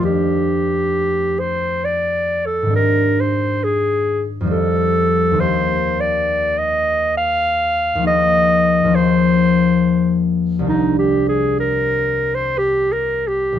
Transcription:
<<
  \new Staff \with { instrumentName = "Clarinet" } { \time 3/4 \key aes \lydian \tempo 4 = 67 g'4. c''8 \tuplet 3/2 { d''4 a'8 } | bes'8 c''8 aes'8. r16 a'4 | \tuplet 3/2 { c''4 d''8~ d''8 ees''4 } f''4 | ees''4 c''4. r8 |
\tuplet 3/2 { ees'8 g'8 aes'8 } bes'8. c''16 \tuplet 3/2 { g'8 bes'8 g'8 } | }
  \new Staff \with { instrumentName = "Harp" } { \time 3/4 \key aes \lydian <f, ees f a d' g'>2. | <aes, ees c' d' g'>2 <f, ees g c' g'>4 | <ees, ees bes ees' g'>2. | <ees, f bes ees' aes'>4 <ees, f bes ees' aes'>2 |
<c, ees c' d' g'>2. | }
>>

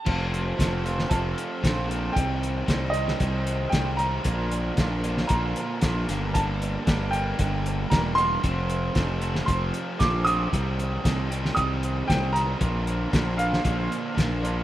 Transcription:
<<
  \new Staff \with { instrumentName = "Upright piano" } { \time 4/4 \key f \mixolydian \tempo 4 = 115 a''2 a''2 | g''4. ees''4. g''8 bes''8~ | bes''2 bes''2 | a''4. g''4. bes''8 c'''8~ |
c'''2 c'''4 d'''8 ees'''8~ | ees'''2 ees'''4 g''8 bes''8~ | bes''4. f''2~ f''8 | }
  \new Staff \with { instrumentName = "Overdriven electric guitar" } { \time 4/4 \key f \mixolydian <f a c' f'>4 <f a c' f'>8 <f a c' f'>8 <f a c' f'>4 <f a c' f'>8 <f a c' f'>8 | <c ees g c' g'>4 <c ees g c' g'>8 <c ees g c' g'>8 <c ees g c' g'>4 <c ees g c' g'>8 <c ees g c' g'>8 | <bes, d bes d' f'>4 <bes, d bes d' f'>8 <bes, d bes d' f'>8 <bes, d bes d' f'>4 <bes, d bes d' f'>8 <g, d g bes d' g'>8 | <g, d g bes d' g'>4 <g, d g bes d' g'>8 <g, d g bes d' g'>8 <g, d g bes d' g'>4 <g, d g bes d' g'>8 <g, d g bes d' g'>8 |
<f, c f a c' f'>4 <f, c f a c' f'>8 <f, c f a c' f'>8 <f, c f a c' f'>4 <f, c f a c' f'>8 <f, c f a c' f'>8 | <c ees g c' g'>4 <c ees g c' g'>8 <c ees g c' g'>8 <c ees g c' g'>4 <c ees g c' g'>8 <c ees g c' g'>8 | <bes, d bes d' f'>4 <bes, d bes d' f'>8 <bes, d bes d' f'>8 <bes, d bes d' f'>4 <bes, d bes d' f'>8 <bes, d bes d' f'>8 | }
  \new Staff \with { instrumentName = "Overdriven electric guitar" } { \clef bass \time 4/4 \key f \mixolydian <f, c f a c'>4 <f, c f a c'>8 <f, c f a c'>8 <f, c f a c'>4 <f, c f a c'>8 <f, c f a c'>8 | <c g c' ees'>4 <c g c' ees'>8 <c g c' ees'>8 <c g c' ees'>4 <c g c' ees'>8 <c g c' ees'>8 | <bes, d f bes d'>4 <bes, d f bes d'>8 <bes, d f bes d'>8 <bes, d f bes d'>4 <bes, d f bes d'>8 <g, d g bes d'>8 | <g, d g bes d'>4 <g, d g bes d'>8 <g, d g bes d'>8 <g, d g bes d'>4 <g, d g bes d'>8 <g, d g bes d'>8 |
<f, c f a c'>4 <f, c f a c'>8 <f, c f a c'>8 <f, c f a c'>4 <f, c f a c'>8 <f, c f a c'>8 | <c g c' ees'>4 <c g c' ees'>8 <c g c' ees'>8 <c g c' ees'>4 <c g c' ees'>8 <c g c' ees'>8 | <bes, d f bes d'>4 <bes, d f bes d'>8 <bes, d f bes d'>8 <bes, d f bes d'>4 <bes, d f bes d'>8 <bes, d f bes d'>8 | }
  \new Staff \with { instrumentName = "Fingered electric bass" } { \clef bass \time 4/4 \key f \mixolydian f,,4 f,,4 f,,8 r8 bes,,4 | c,4 c,4 c,4 c,4 | bes,,4 bes,,4 bes,,8 r8 bes,,8 g,,8~ | g,,4 g,,4 g,,4 e,,4 |
f,,4 f,,4 f,,8 r8 bes,,4 | c,4 c,4 c,4 c,4 | bes,,4 bes,,4 bes,,8 r8 bes,,4 | }
  \new DrumStaff \with { instrumentName = "Drums" } \drummode { \time 4/4 <cymc bd>8 hh8 <hh bd sn>8 hh16 sn16 <hh bd>8 hh8 <hh bd sn>8 hh8 | <hh bd>8 hh8 <hh bd sn>8 hh16 sn16 <hh bd>8 hh8 <hh bd sn>8 hh8 | <hh bd>8 hh8 <hh bd sn>8 hh16 sn16 <hh bd>8 hh8 <hh bd sn>8 <hh sn>8 | <hh bd>8 hh8 <hh bd sn>8 hh8 <hh bd>8 hh8 <hh bd sn>8 hh8 |
<hh bd>8 hh8 <hh bd sn>8 hh16 sn16 <hh bd>8 hh8 <hh bd sn>8 hh8 | <hh bd>8 hh8 <hh bd sn>8 hh16 sn16 <hh bd>8 hh8 <hh bd sn>8 <hh sn>8 | <hh bd>8 hh8 <hh bd sn>8 hh16 sn16 <hh bd>8 hh8 <hh bd sn>8 hh8 | }
>>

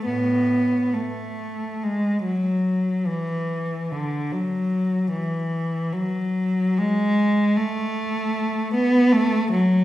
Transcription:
\new Staff \with { instrumentName = "Cello" } { \clef bass \time 3/4 \key fis \minor \tempo 4 = 74 <a, b>4 a4 gis8 fis8~ | fis8 e4 d8 fis4 | e4 fis4 gis4 | a4. b8 a8 fis8 | }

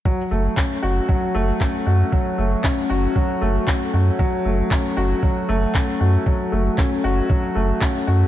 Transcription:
<<
  \new Staff \with { instrumentName = "Felt piano" } { \time 4/4 \key fis \minor \tempo 4 = 116 fis8 a8 cis'8 fis'8 fis8 a8 cis'8 fis'8 | fis8 a8 cis'8 fis'8 fis8 a8 cis'8 fis'8 | fis8 a8 cis'8 fis'8 fis8 a8 cis'8 fis'8 | fis8 a8 cis'8 fis'8 fis8 a8 cis'8 fis'8 | }
  \new Staff \with { instrumentName = "Sub bass" } { \clef bass \time 4/4 \key fis \minor r8 fis,,8 r8 fis,,8 r8 fis,,8 r8 fis,8 | r8 fis,,8 r8 fis,,8 r8 fis,,8 r8 fis,8 | r8 fis,,8 r8 fis,,8 r8 fis,,8 r8 fis,8 | r8 fis,,8 r8 fis,,8 r8 fis,,8 r8 fis,8 | }
  \new DrumStaff \with { instrumentName = "Drums" } \drummode { \time 4/4 bd4 <hc bd>4 bd4 <hc bd>4 | bd4 <hc bd>4 bd4 <hc bd>4 | bd4 <hc bd>4 bd4 <hc bd>4 | bd4 <hc bd>4 bd4 <hc bd>4 | }
>>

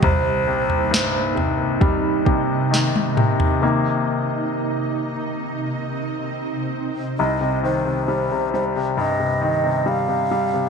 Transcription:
<<
  \new Staff \with { instrumentName = "Ocarina" } { \time 4/4 \key c \minor \tempo 4 = 67 c''4. r2 r8 | r1 | ees''8 c''4 c''8 ees''4 f''4 | }
  \new Staff \with { instrumentName = "Ambient pad" } { \time 4/4 \key c \minor << { <c ees'>1 | <c ees'>1 | r1 | } \\ { bes1 | bes2 c'2 | r1 | } >> }
  \new Staff \with { instrumentName = "Grand piano" } { \clef bass \time 4/4 \key c \minor c,8 c8 g,8 c8 g8 c8 ees8 c8 | <c ees bes>1 | c,16 c16 ees16 c16 g16 c16 g16 c16 g,16 c16 ees16 c16 g16 c16 g16 c16 | }
  \new DrumStaff \with { instrumentName = "Drums" } \drummode { \time 4/4 <bd tomfh>8. tomfh16 sn8 tomfh8 <bd tomfh>8 bd8 sn16 tommh16 toml16 tomfh16 | r4 r4 r4 r4 | r4 r4 r4 r4 | }
>>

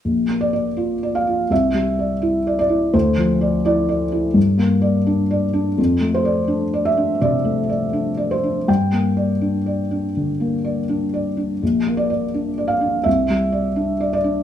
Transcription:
\new Staff \with { instrumentName = "Felt piano" } { \time 4/4 \key g \dorian \tempo 4 = 83 << { r8 d''4 f''8 e''4. d''8 | c''4 d''2~ d''8 r8 | r8 c''4 e''8 d''4. c''8 | g''2. r4 |
r8 d''4 f''8 e''4. d''8 | } \\ { \tuplet 3/2 { bes,,8 bes8 d''8 f'8 d''8 f'8 c,8 g8 d''8 e'8 d''8 e'8 } | \tuplet 3/2 { d,8 f8 d''8 e'8 d''8 e'8 g,8 bes8 d''8 d'8 d''8 d'8 } | \tuplet 3/2 { f,8 a8 d''8 d'8 d''8 d'8 c8 a8 d''8 d'8 d''8 d'8 } | \tuplet 3/2 { g,8 bes8 d''8 d'8 d''8 d'8 d8 bes8 d''8 d'8 d''8 d'8 } |
\tuplet 3/2 { bes,,8 bes8 d''8 d'8 d''8 d'8 c,8 g8 d''8 d'8 d''8 d'8 } | } >> }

